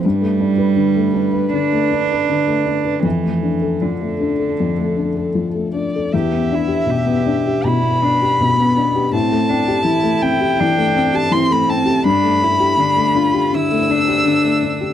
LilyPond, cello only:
\new Staff \with { instrumentName = "Cello" } { \time 4/4 \key e \phrygian \tempo 4 = 81 g2 d'2 | e4 d2 r4 | g'8 e'8 g'4 e'8 d'8 b4 | c'8 d'8 e'4 d'4 c'4 |
d'8 e'8 d'8 f'8 e'8 d'4. | }